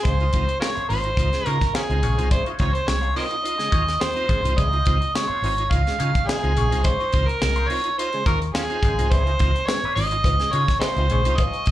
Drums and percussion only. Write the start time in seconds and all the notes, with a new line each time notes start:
0.05 kick, closed hi-hat
0.20 closed hi-hat
0.33 kick, closed hi-hat
0.49 closed hi-hat
0.62 snare
0.77 closed hi-hat
0.90 open hi-hat
1.04 closed hi-hat
1.17 kick, closed hi-hat
1.33 snare, closed hi-hat
1.46 closed hi-hat
1.61 kick, snare, closed hi-hat
1.75 snare
1.90 closed hi-hat
2.03 closed hi-hat
2.19 closed hi-hat
2.31 kick, closed hi-hat
2.46 closed hi-hat
2.59 kick, closed hi-hat
2.75 closed hi-hat
2.88 snare
3.03 closed hi-hat
3.16 open hi-hat
3.31 closed hi-hat
3.45 closed hi-hat
3.59 snare, closed hi-hat
3.72 kick, closed hi-hat
3.88 snare, closed hi-hat
4.01 snare
4.17 closed hi-hat
4.29 kick, closed hi-hat
4.45 closed hi-hat
4.58 kick, closed hi-hat
4.73 closed hi-hat
4.86 kick, closed hi-hat
5.02 closed hi-hat
5.16 snare
5.44 open hi-hat
5.58 closed hi-hat
5.71 kick, closed hi-hat
5.87 snare, closed hi-hat
6.00 closed hi-hat
6.15 kick, closed hi-hat
6.29 snare
6.44 closed hi-hat
6.57 closed hi-hat
6.72 closed hi-hat
6.84 kick, closed hi-hat
7.00 closed hi-hat
7.12 kick, closed hi-hat
7.29 closed hi-hat
7.42 snare
7.56 closed hi-hat
7.70 open hi-hat
7.84 closed hi-hat
7.99 closed hi-hat
8.13 closed hi-hat
8.26 kick, closed hi-hat
8.42 closed hi-hat
8.55 snare
8.70 closed hi-hat
8.83 kick, closed hi-hat
8.99 closed hi-hat
9.11 kick, closed hi-hat, cowbell
9.27 closed hi-hat
9.39 kick, closed hi-hat
9.56 closed hi-hat
9.68 snare, cowbell
9.84 closed hi-hat
9.97 open hi-hat
10.11 closed hi-hat
10.24 kick, closed hi-hat, cowbell
10.40 snare, closed hi-hat
10.53 closed hi-hat
10.68 kick, snare, closed hi-hat
10.82 snare, cowbell
10.97 closed hi-hat
11.10 closed hi-hat
11.25 closed hi-hat
11.38 kick, closed hi-hat, cowbell
11.53 closed hi-hat
11.66 kick, closed hi-hat